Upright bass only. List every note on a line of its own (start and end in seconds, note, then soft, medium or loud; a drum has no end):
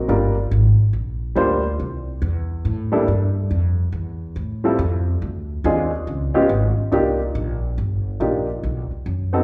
0.09 0.51 G1 medium
0.51 0.77 G#1 loud
0.79 muted upright bass stroke soft
0.93 1.35 A#1 medium
1.36 1.78 D2 loud
1.80 2.21 C2 medium
2.22 2.64 E2 medium
2.65 3.07 A2 medium
3.08 3.50 G2 loud
3.51 3.92 F2 medium
3.92 4.35 E2 medium
4.36 4.78 A2 medium
4.79 5.20 F2 loud
5.22 5.63 D2 medium
5.64 6.06 D#2 loud
6.07 6.33 C#2 medium
6.35 muted upright bass stroke soft
6.49 6.75 G#1 loud
6.77 muted upright bass stroke soft
6.92 7.34 C2 medium
7.35 7.77 A#1 loud
7.78 8.20 G1 medium
8.20 8.62 A#1 medium
8.63 8.89 B1 medium
8.91 muted upright bass stroke soft
9.06 9.44 F#2 loud